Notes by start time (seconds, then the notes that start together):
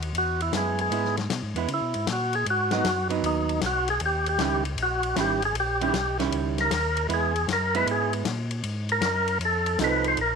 Already playing: D#2
0.02 ride
0.13 E2, ride
0.18 F#4
0.40 E4, ride
0.52 F#2 G#3 B3 E4, snare, hi-hat pedal, ride
0.57 G#4
0.79 G#4, ride
0.91 G#2 G#3 B3 E4, ride
1.05 snare
1.17 snare, ride
1.30 B2, snare, hi-hat pedal, ride
1.43 G#2
1.54 E2 G#3 B3 E4, ride
1.68 C#3, ride
1.74 E4
1.82 B2
1.94 G#2, ride
2.07 A#2, snare, hi-hat pedal, ride
2.13 F#4
2.33 G#4, ride
2.46 G#2, ride
2.50 F#4
2.71 F#3 B3 D#4 F#4, snare, ride
2.84 F#2, snare, hi-hat pedal, ride
3.09 F#3 B3 D#4, ride
3.22 D#2 D#4, ride
3.49 ride
3.61 B1, snare, hi-hat pedal, ride
3.66 F#4
3.88 G#4, ride
4.00 D#2, ride
4.06 G4
4.26 G4, ride
4.38 C#2 D#3 G3 C#4 E4, snare, hi-hat pedal, ride
4.65 ride
4.76 A#1, ride
4.83 F#4
5.03 ride
5.15 G#1 D#3 G3 C#4 E4, snare, hi-hat pedal, ride
5.21 G4
5.42 G#4, ride
5.53 A#1, ride
5.60 G4
5.81 D#3 G3 C#4 E4 G4, ride
5.93 B1, snare, hi-hat pedal, ride
6.19 D#3 G3 C#4 E4, snare, ride
6.32 C#2, ride
6.58 A#4, snare, ride
6.70 D#2, snare, hi-hat pedal, ride
6.97 ride
7.08 E2 G#3 B3 E4, ride
7.14 G#4
7.36 ride
7.47 F#2, snare, hi-hat pedal, ride
7.53 A#4
7.74 G#3 B3 E4 B4, ride
7.86 G#2, ride
7.91 G#4
8.13 ride
8.25 A#2, snare, hi-hat pedal, ride
8.51 ride
8.63 G#2, ride
8.89 A#4, ride
9.01 F#2, snare, hi-hat pedal, ride
9.28 ride
9.39 F2, ride
9.45 A4
9.66 ride
9.78 C2 F3 C4 D#4 A4, snare, hi-hat pedal, ride
9.84 B4
10.04 C5, ride
10.17 A#1, ride
10.21 A#4